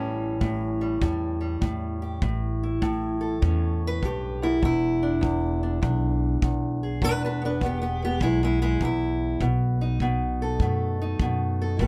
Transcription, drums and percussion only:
0.41 kick medium
1.02 kick medium
1.62 kick medium
2.22 kick medium
2.82 kick medium
3.43 kick medium
4.03 kick medium
4.63 kick medium
5.23 kick medium
5.83 kick medium
6.42 kick medium
7.02 kick medium
7.61 kick medium
8.21 kick medium
8.81 kick medium
9.41 kick medium
10.00 kick medium
10.60 kick medium
11.20 kick medium
11.79 kick medium

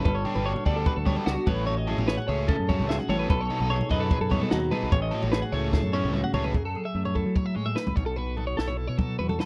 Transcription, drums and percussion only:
0.05 kick loud
0.05 floor tom medium
0.26 floor tom medium
0.35 floor tom medium
0.56 floor tom medium
0.66 kick medium
0.86 kick loud
0.86 floor tom medium
1.06 kick medium
1.06 floor tom medium
1.06 mid tom medium
1.17 floor tom medium
1.17 mid tom medium
1.27 snare medium
1.27 mid tom medium
1.47 kick loud
1.47 floor tom medium
1.47 mid tom medium
1.67 floor tom medium
1.88 floor tom medium
1.98 floor tom medium
2.08 snare medium
2.18 floor tom medium
2.48 kick loud
2.48 floor tom medium
2.69 kick medium
2.69 floor tom medium
2.69 mid tom medium
2.79 floor tom medium
2.79 mid tom medium
2.90 snare medium
2.90 mid tom medium
3.00 floor tom medium
3.10 floor tom medium
3.10 mid tom medium
3.30 kick loud
3.30 floor tom medium
3.50 floor tom medium
3.60 floor tom medium
3.81 floor tom medium
3.91 kick medium
4.11 kick loud
4.11 floor tom medium
4.31 kick medium
4.31 floor tom medium
4.31 mid tom medium
4.42 floor tom medium
4.42 mid tom medium
4.51 snare medium
4.51 mid tom medium
4.72 floor tom medium
4.72 mid tom medium
4.92 kick loud
4.92 floor tom medium
5.12 floor tom medium
5.22 floor tom medium
5.33 snare medium
5.43 floor tom medium
5.73 kick loud
5.73 snare medium
5.93 high tom medium
6.14 mid tom medium
6.24 mid tom medium
6.34 floor tom loud
6.44 floor tom medium
6.54 kick medium
6.54 floor tom medium
6.75 floor tom medium
7.05 floor tom medium
7.16 kick medium
7.36 kick medium
7.36 floor tom medium
7.66 floor tom medium
7.76 snare medium
7.87 floor tom medium
7.87 mid tom medium
7.97 kick medium
8.17 floor tom medium
8.37 floor tom medium
8.59 snare medium
8.68 floor tom medium
8.99 kick medium
8.99 floor tom medium
8.99 mid tom medium
9.19 mid tom medium
9.29 floor tom medium
9.29 mid tom medium
9.40 snare medium

